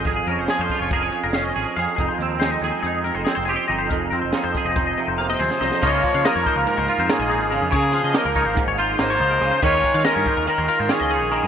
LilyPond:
<<
  \new Staff \with { instrumentName = "Clean electric guitar" } { \time 9/8 \key des \lydian \tempo 4. = 94 bes'16 aes'16 bes'16 c''16 aes'16 c''8 des''16 bes'16 des''8 bes'16 f''16 ees''16 des''16 bes'16 f''8 | aes'16 c''16 bes'8 c''16 ees''16 des''16 c''16 aes'8 bes'16 c''16 aes'16 c''16 aes'16 c''16 ees''16 c''16 | bes'16 aes'16 bes'16 c''16 aes'16 c''8 ees''16 c''16 ees''8 c''16 f''16 ees''16 c''16 aes'16 ees''8 | ees''8 des''16 f''16 ees''16 des''16 c''16 bes'8 c''16 bes'16 c''16 des''16 ees''16 aes'8 bes'16 aes'16 |
des''16 bes'16 f''16 ees''8 bes'16 des''16 c''16 bes'16 des''16 c''8 bes'16 des''16 c''16 bes'16 aes'16 c''16 | ees''8 des''16 f''16 ees''16 des''16 c''16 bes'8 c''16 bes'16 c''16 des''16 ees''16 aes'8 bes'16 aes'16 | }
  \new Staff \with { instrumentName = "Trumpet" } { \time 9/8 \key des \lydian r1 r8 | r1 r8 | r2. c''4. | des''4 bes'4 bes'4 aes'4. |
aes'4 bes'4 r4 c''4. | des''4 bes'4 bes'4 aes'4. | }
  \new Staff \with { instrumentName = "Clean electric guitar" } { \time 9/8 \key des \lydian << { aes'8 des'8 aes'8 f'8 aes'4 des'8 aes'8 aes'8 | ees'8 c'8 ees'8 aes'8 ees'4 c'8 g'8 ees'8 | ees'8 c'8 ees'8 aes'8 ees'4 bes16 c'16 aes'8 ees'8 | <f bes ees' f'>4 bes8 ees'4 f'8 bes8 ees'4 |
r4 bes8 ees'4 f'8 bes8 ees'4 | <aes des' ees' f'>4 des'8 ees'4 f'8 des'8 ees'4 | } \\ { <f, f>4 f4. f,4. f,8 | f,4 aes4. f,4. f,8 | f,4 f4. c4. f,8 | des8 f4. aes,2 des8 |
des8 f4. aes,2 des8 | ees8 aes4. ees2 ees8 | } >> }
  \new Staff \with { instrumentName = "Picked electric bass" } { \clef bass \time 9/8 \key des \lydian aes,,8 f,16 f,,16 r16 f,16 r16 f,,16 f,,8 r16 f,,8. aes,,16 r16 f,16 r16 | f,,16 r16 ees,4 ees,16 r16 f,8. f,,16 r16 f,,8 r16 g,,8 | f,,8 f,16 f,,16 r16 f,16 r16 f,,16 f,,8 r16 f,,8. ees,16 r16 c,16 r16 | des,8 r16 des16 r16 f,16 r16 des,16 r16 des,16 r16 f,16 r16 bes,,8 aes,,8 f,16 |
des8. des16 r16 des,8 aes,,16 r16 aes,,8. aes,,8 des,8 des,16 r16 | ees,8 r16 ees16 r16 g,16 r16 ees,16 r16 ees,16 r16 aes,16 r16 des,8 bes,,8 g,16 | }
  \new DrumStaff \with { instrumentName = "Drums" } \drummode { \time 9/8 <hh bd>8 hh8 <hh sn>8 <hh bd>8 <hh bd>8 hh8 <hh sn>8 hh8 hh8 | <hh bd>8 hh8 <hh sn>8 hh8 hh8 hh8 <hh sn>8 hh8 hh8 | <hh bd>8 hh8 <hh sn>8 <hh bd sn>8 <hh bd sn>8 hh8 tommh16 tommh16 toml16 sn16 sn16 sn16 | <cymc bd>8 <hh bd>8 <hh sn>8 <hh bd>8 hh8 hh8 <hh sn>8 hh8 hh8 |
<hh bd>8 <hh sn>8 <hh sn>8 <hh bd>8 <hh bd sn>8 hh8 <hh sn>8 hh8 hh8 | <hh bd>8 <hh bd>8 <hh sn>8 <hh bd>8 hh8 hh8 <hh sn>8 hh8 hh8 | }
>>